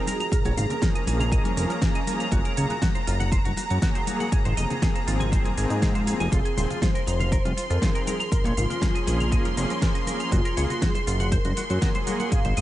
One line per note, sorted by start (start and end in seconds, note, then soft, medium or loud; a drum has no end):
0.00 6.33 A#5 medium
0.07 0.15 G#4 loud
0.07 0.17 A#4 medium
0.07 open hi-hat loud
0.07 high conga medium
0.07 shaker medium
0.15 0.22 F#4 medium
0.20 0.56 G#4 loud
0.20 0.29 A#5 medium
0.20 closed hi-hat soft
0.20 muted conga medium
0.20 shaker soft
0.32 0.42 A#1 soft
0.32 0.39 A#4 medium
0.32 kick loud
0.32 closed hi-hat medium
0.32 shaker soft
0.45 0.54 A#1 loud
0.45 0.54 C#5 medium
0.45 closed hi-hat soft
0.45 muted conga medium
0.45 shaker soft
0.56 0.66 G#1 medium
0.56 2.04 F3 medium
0.56 2.04 A#3 medium
0.56 2.04 C#4 medium
0.56 0.83 G#4 medium
0.56 2.05 G#4 medium
0.56 0.64 F5 medium
0.56 open hi-hat loud
0.56 low conga medium
0.56 shaker medium
0.70 0.79 A#4 medium
0.70 closed hi-hat soft
0.70 low conga medium
0.70 shaker soft
0.82 1.78 A#4 medium
0.82 0.89 A#4 loud
0.82 kick loud
0.82 snare loud
0.82 closed hi-hat medium
0.82 muted conga medium
0.82 high conga loud
0.82 shaker soft
0.95 1.01 D#5 medium
0.95 closed hi-hat soft
0.95 shaker soft
1.07 1.39 A#1 loud
1.07 1.14 G#4 loud
1.07 open hi-hat loud
1.07 muted conga medium
1.07 shaker medium
1.19 1.29 A#5 medium
1.19 closed hi-hat soft
1.19 low conga medium
1.19 shaker soft
1.32 1.42 D#5 medium
1.32 kick loud
1.32 closed hi-hat medium
1.32 shaker soft
1.45 1.55 F1 soft
1.45 1.51 A#4 medium
1.45 closed hi-hat soft
1.45 muted conga soft
1.45 high conga medium
1.45 shaker soft
1.57 1.66 F1 medium
1.57 1.63 A#4 medium
1.57 open hi-hat loud
1.57 shaker medium
1.70 1.79 A#4 medium
1.70 closed hi-hat soft
1.70 muted conga medium
1.70 shaker soft
1.82 1.89 A#4 loud
1.82 kick loud
1.82 snare loud
1.82 closed hi-hat medium
1.82 shaker soft
1.95 2.01 D#5 medium
1.95 closed hi-hat soft
1.95 shaker soft
2.07 2.17 A#4 medium
2.07 open hi-hat loud
2.07 muted conga soft
2.07 high conga medium
2.07 shaker medium
2.20 2.29 A#5 medium
2.20 closed hi-hat soft
2.20 shaker soft
2.32 2.41 F#1 loud
2.32 2.39 F#4 medium
2.32 kick loud
2.32 closed hi-hat loud
2.32 muted conga medium
2.32 shaker soft
2.45 2.54 A#4 medium
2.45 closed hi-hat soft
2.45 shaker soft
2.57 2.66 C#2 medium
2.57 2.64 C#5 medium
2.57 open hi-hat loud
2.57 low conga medium
2.57 shaker medium
2.70 2.79 F#4 medium
2.70 closed hi-hat soft
2.70 muted conga medium
2.70 low conga medium
2.70 shaker soft
2.82 2.89 F#4 loud
2.82 kick loud
2.82 snare loud
2.82 closed hi-hat medium
2.82 high conga medium
2.82 shaker soft
2.95 3.01 C5 medium
2.95 closed hi-hat soft
2.95 muted conga medium
2.95 shaker soft
3.07 3.39 F#1 loud
3.07 3.14 F4 loud
3.07 open hi-hat loud
3.07 shaker medium
3.20 3.29 F#5 medium
3.20 closed hi-hat soft
3.20 low conga medium
3.20 shaker soft
3.32 3.42 C5 medium
3.32 kick loud
3.32 closed hi-hat medium
3.32 muted conga medium
3.32 shaker soft
3.45 3.54 F#1 medium
3.45 3.51 F#4 medium
3.45 closed hi-hat soft
3.45 high conga medium
3.45 shaker soft
3.56 4.29 F#3 medium
3.56 4.29 A#3 medium
3.56 3.64 F#4 medium
3.56 4.30 G#4 loud
3.56 open hi-hat loud
3.56 muted conga medium
3.56 shaker medium
3.70 3.79 F#2 medium
3.70 3.79 F#4 medium
3.70 closed hi-hat soft
3.70 shaker soft
3.82 3.89 F#4 loud
3.82 kick loud
3.82 snare loud
3.82 closed hi-hat medium
3.82 shaker soft
3.95 4.01 C5 medium
3.95 closed hi-hat soft
3.95 muted conga soft
3.95 shaker soft
4.07 4.17 F#4 medium
4.07 open hi-hat loud
4.07 high conga medium
4.07 shaker medium
4.20 4.29 F#5 medium
4.20 closed hi-hat soft
4.20 muted conga medium
4.20 shaker soft
4.32 4.42 G#1 soft
4.32 4.39 G#4 medium
4.32 kick loud
4.32 closed hi-hat medium
4.32 shaker soft
4.45 4.54 G#1 loud
4.45 4.54 C5 medium
4.45 closed hi-hat soft
4.45 shaker soft
4.57 4.66 F1 medium
4.57 6.04 F3 medium
4.57 6.04 A#3 medium
4.57 6.05 C4 medium
4.57 6.05 G#4 medium
4.57 4.64 D#5 medium
4.57 open hi-hat loud
4.57 muted conga medium
4.57 low conga medium
4.57 shaker medium
4.70 4.79 G#4 medium
4.70 closed hi-hat soft
4.70 low conga medium
4.70 shaker soft
4.82 4.89 G#4 loud
4.82 kick loud
4.82 snare loud
4.82 closed hi-hat medium
4.82 muted conga medium
4.82 high conga medium
4.82 shaker soft
4.95 5.01 C5 medium
4.95 closed hi-hat soft
4.95 shaker soft
5.07 5.39 G#1 loud
5.07 5.14 F4 loud
5.07 open hi-hat loud
5.07 shaker medium
5.20 5.29 G#5 medium
5.20 closed hi-hat soft
5.20 muted conga medium
5.20 low conga medium
5.20 shaker soft
5.32 5.42 C5 medium
5.32 kick loud
5.32 closed hi-hat medium
5.32 shaker soft
5.44 5.55 G#1 soft
5.44 5.51 G#4 medium
5.44 closed hi-hat soft
5.44 muted conga medium
5.44 high conga medium
5.44 shaker soft
5.57 5.66 G#1 medium
5.57 5.64 G#4 medium
5.57 open hi-hat loud
5.57 shaker medium
5.70 6.14 G#2 medium
5.70 5.79 G#4 medium
5.70 closed hi-hat soft
5.70 shaker soft
5.82 5.89 G#4 loud
5.82 kick loud
5.82 snare loud
5.82 closed hi-hat medium
5.82 muted conga soft
5.82 shaker soft
5.95 6.01 C5 medium
5.95 closed hi-hat soft
5.95 shaker soft
6.07 6.17 G#4 medium
6.07 open hi-hat loud
6.07 muted conga medium
6.07 high conga medium
6.07 shaker medium
6.20 6.28 F1 medium
6.20 6.29 G#5 medium
6.20 closed hi-hat soft
6.20 shaker soft
6.32 6.41 F1 loud
6.32 6.39 F4 medium
6.32 6.84 G#4 loud
6.32 12.61 C6 medium
6.32 kick loud
6.32 closed hi-hat medium
6.32 muted conga medium
6.32 shaker soft
6.45 6.54 G#4 medium
6.45 closed hi-hat soft
6.45 shaker soft
6.57 6.66 D#1 medium
6.57 6.64 C5 medium
6.57 open hi-hat loud
6.57 muted conga medium
6.57 low conga medium
6.57 shaker medium
6.70 6.79 F4 medium
6.70 closed hi-hat soft
6.70 low conga medium
6.70 shaker soft
6.81 6.88 F4 loud
6.81 7.32 C5 loud
6.81 kick loud
6.81 snare loud
6.81 closed hi-hat medium
6.81 high conga medium
6.81 shaker soft
6.94 7.01 A#4 medium
6.94 closed hi-hat soft
6.94 muted conga soft
6.94 shaker soft
7.07 7.39 F1 loud
7.07 7.13 D#4 loud
7.07 open hi-hat loud
7.07 shaker medium
7.19 7.29 F5 medium
7.19 closed hi-hat soft
7.19 muted conga medium
7.19 low conga medium
7.19 shaker soft
7.32 7.42 A#4 medium
7.32 7.72 C5 loud
7.32 kick loud
7.32 closed hi-hat medium
7.32 shaker soft
7.45 7.53 F1 medium
7.45 7.51 F4 medium
7.45 closed hi-hat soft
7.45 high conga medium
7.45 shaker soft
7.57 8.05 F3 medium
7.57 8.06 C4 medium
7.57 8.06 D#4 medium
7.57 7.63 F4 medium
7.57 8.06 G#4 loud
7.57 open hi-hat loud
7.57 muted conga soft
7.57 shaker medium
7.70 7.78 F2 medium
7.70 7.79 F4 medium
7.70 8.08 A#4 loud
7.70 closed hi-hat soft
7.70 shaker soft
7.82 7.89 F4 loud
7.82 kick loud
7.82 snare loud
7.82 closed hi-hat medium
7.82 muted conga medium
7.82 shaker soft
7.95 8.01 A#4 medium
7.95 closed hi-hat soft
7.95 shaker soft
8.07 8.19 G#4 medium
8.07 8.17 A#4 medium
8.07 open hi-hat loud
8.07 high conga medium
8.07 shaker medium
8.19 8.29 A#5 medium
8.19 closed hi-hat soft
8.19 muted conga soft
8.19 shaker soft
8.32 8.42 A#1 soft
8.32 8.38 A#4 medium
8.32 8.58 A#4 loud
8.32 kick loud
8.32 closed hi-hat medium
8.32 shaker soft
8.44 8.54 A#1 loud
8.44 8.54 C#5 medium
8.44 closed hi-hat soft
8.44 muted conga medium
8.44 shaker soft
8.56 8.66 G#1 medium
8.56 10.04 F3 medium
8.56 10.04 A#3 medium
8.56 10.04 C#4 medium
8.56 9.54 F4 medium
8.56 10.05 G#4 loud
8.56 8.64 F5 medium
8.56 open hi-hat loud
8.56 low conga medium
8.56 shaker medium
8.70 8.79 A#4 medium
8.70 closed hi-hat soft
8.70 low conga medium
8.70 shaker soft
8.81 8.89 A#4 loud
8.81 kick loud
8.81 snare loud
8.81 closed hi-hat medium
8.81 muted conga soft
8.81 high conga medium
8.81 shaker soft
8.95 9.01 D#5 medium
8.95 closed hi-hat soft
8.95 shaker soft
9.07 9.39 A#1 medium
9.07 9.13 G#4 loud
9.07 open hi-hat loud
9.07 muted conga medium
9.07 shaker medium
9.20 9.29 A#5 medium
9.20 closed hi-hat soft
9.20 low conga medium
9.20 shaker soft
9.32 9.42 D#5 medium
9.32 kick loud
9.32 closed hi-hat medium
9.32 shaker soft
9.44 9.55 F1 soft
9.44 9.51 A#4 medium
9.44 closed hi-hat soft
9.44 muted conga soft
9.44 high conga medium
9.44 shaker soft
9.57 9.66 F1 medium
9.57 9.64 A#4 medium
9.57 open hi-hat loud
9.57 shaker medium
9.70 9.79 A#4 medium
9.70 closed hi-hat soft
9.70 muted conga medium
9.70 shaker soft
9.82 9.89 A#4 loud
9.82 kick loud
9.82 snare loud
9.82 closed hi-hat medium
9.82 shaker soft
9.95 10.01 D#5 medium
9.95 closed hi-hat soft
9.95 shaker soft
10.07 10.17 A#4 medium
10.07 open hi-hat loud
10.07 muted conga medium
10.07 high conga medium
10.07 shaker medium
10.20 10.29 A#5 medium
10.20 closed hi-hat soft
10.20 shaker soft
10.32 10.41 F#1 loud
10.32 10.84 F4 medium
10.32 10.38 F#4 medium
10.32 kick loud
10.32 closed hi-hat loud
10.32 muted conga medium
10.32 shaker soft
10.45 10.54 A#4 medium
10.45 closed hi-hat soft
10.45 shaker soft
10.57 10.66 C#2 medium
10.57 10.63 C#5 medium
10.57 open hi-hat loud
10.57 low conga medium
10.57 shaker medium
10.70 10.79 F#4 medium
10.70 closed hi-hat soft
10.70 muted conga medium
10.70 low conga medium
10.70 shaker soft
10.82 10.89 F#4 loud
10.82 11.29 G#4 medium
10.82 kick loud
10.82 snare loud
10.82 closed hi-hat medium
10.82 high conga medium
10.82 shaker soft
10.95 11.01 C5 medium
10.95 closed hi-hat soft
10.95 muted conga medium
10.95 shaker soft
11.07 11.39 F#1 loud
11.07 11.14 F4 loud
11.07 open hi-hat loud
11.07 shaker medium
11.20 11.29 F#5 medium
11.20 closed hi-hat soft
11.20 low conga medium
11.20 shaker soft
11.32 12.35 A#4 medium
11.32 11.42 C5 medium
11.32 kick loud
11.32 closed hi-hat medium
11.32 muted conga medium
11.32 shaker soft
11.45 11.53 F#1 medium
11.45 11.51 F#4 medium
11.45 closed hi-hat soft
11.45 high conga medium
11.45 shaker soft
11.56 12.29 F#3 medium
11.56 12.29 A#3 medium
11.56 11.64 F#4 medium
11.56 12.30 G#4 loud
11.56 open hi-hat loud
11.56 muted conga medium
11.56 shaker medium
11.70 11.78 F#2 medium
11.70 11.79 F#4 medium
11.70 closed hi-hat soft
11.70 shaker soft
11.82 11.88 F#4 loud
11.82 kick loud
11.82 snare loud
11.82 closed hi-hat loud
11.82 shaker soft
11.95 12.01 C5 medium
11.95 closed hi-hat soft
11.95 muted conga medium
11.95 shaker soft
12.07 12.17 F#4 medium
12.07 open hi-hat loud
12.07 high conga loud
12.07 shaker medium
12.20 12.29 F#5 medium
12.20 closed hi-hat soft
12.20 muted conga medium
12.20 shaker soft
12.32 12.42 G#1 soft
12.32 12.38 G#4 medium
12.32 12.61 F5 loud
12.32 kick loud
12.32 closed hi-hat loud
12.32 shaker soft
12.45 12.53 G#1 loud
12.45 12.54 C5 medium
12.45 closed hi-hat soft
12.45 shaker soft
12.56 12.61 F1 medium
12.56 12.61 F3 medium
12.56 12.61 A#3 medium
12.56 12.61 C4 medium
12.56 12.61 G#4 medium
12.56 12.61 D#5 medium
12.56 open hi-hat loud
12.56 muted conga medium
12.56 low conga medium
12.56 shaker medium